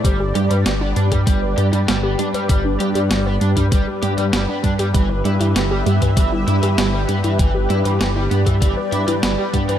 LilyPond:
<<
  \new Staff \with { instrumentName = "Analog synth pad" } { \time 4/4 \key g \mixolydian \tempo 4 = 98 << { d''1~ | d''1 | e''1 | d''1 | } \\ { <g g' b'>1~ | <g g' b'>1~ | <g g' b'>1~ | <g g' b'>1 | } >> }
  \new Staff \with { instrumentName = "Synth arpeggio sound" } { \time 4/4 \key g \mixolydian g16 g'16 g16 b'16 g16 d'16 g16 g'16 g16 b'16 g16 d'16 g16 g'16 g16 b'16 | g16 d'16 g16 g'16 g16 b'16 g16 d'16 g16 g'16 g16 b'16 g16 d'16 g16 g'16 | g16 b'16 g16 e'16 g16 g'16 g16 b'16 g16 e'16 g16 g'16 g16 b'16 g16 e'16 | g16 g'16 g16 b'16 g16 e'16 g16 g'16 g16 b'16 g16 e'16 g16 g'16 g16 b'16 | }
  \new Staff \with { instrumentName = "Overdriven electric guitar" } { \clef bass \time 4/4 \key g \mixolydian g16 r16 g'16 g16 g16 b16 d'16 g16 g16 r16 g'16 g16 g16 b16 d'16 g16 | g16 r16 g'16 g16 g16 b16 d'16 g16 g16 r16 g'16 g16 g16 b16 d'16 g16 | e16 r16 e'16 e16 e16 g16 b16 e16 e16 r16 e'16 e16 e16 g16 b16 e16 | e16 r16 e'16 e16 e16 g16 b16 e16 e16 r16 e'16 e16 e16 g16 b16 e16 | }
  \new Staff \with { instrumentName = "Detuned saw bass" } { \clef bass \time 4/4 \key g \mixolydian g,,8 g,16 g,16 g,,8 g,16 g,16 g,,8 g,16 g,16 g,,8 g,16 g,16 | g,,8 g,16 g,16 g,,8 g,16 g,16 g,,16 r16 g,16 g,16 g,,16 r16 g,16 g,16 | g,,8 g,16 g,16 g,,8 g,16 g,16 g,,8 g,16 g,16 g,,8 g,16 g,16 | g,,8 g,16 g,16 g,,8 g,16 g,16 g,,16 r16 g,16 g,16 g,,16 r16 g,16 g,16 | }
  \new DrumStaff \with { instrumentName = "Drums" } \drummode { \time 4/4 <hh bd>8 hh16 hh16 <hh sn>8 hh16 <hh bd>16 <hh bd>8 hh16 hh16 <hh sn>8 hh16 hh16 | <hh bd>8 hh16 hh16 <hh sn>8 hh16 <hh bd>16 <hh bd>8 hh16 hh16 <hh sn>8 <hh bd>16 hh16 | <hh bd>8 hh16 hh16 <hh sn>8 hh16 <hh bd>16 <hh bd>8 hh16 hh16 <hh sn>8 hh16 hh16 | <hh bd>8 hh16 hh16 <hh sn>8 hh16 <hh bd>16 <hh bd>8 hh16 hh16 <hh sn>8 <hh bd>16 hh16 | }
>>